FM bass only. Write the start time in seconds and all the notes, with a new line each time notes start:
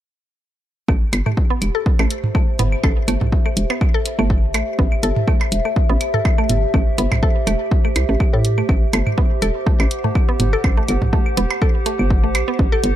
0.88 A1
1.13 G1
1.62 E1
1.99 A1
2.59 G1
2.84 A1
3.08 G1
3.57 E1
4.19 G1
4.54 A1
4.79 A1
5.03 G1
5.52 E1
5.90 A1
6.49 G1
6.74 A1
6.98 G1
7.47 E1
7.96 C2
8.09 A1
8.33 A2
8.69 A1
8.93 G1
9.42 E1
9.80 A1
10.40 G1
10.64 A1
10.89 G1
11.37 E1
11.99 G1
12.35 A1
12.59 A1
12.84 G1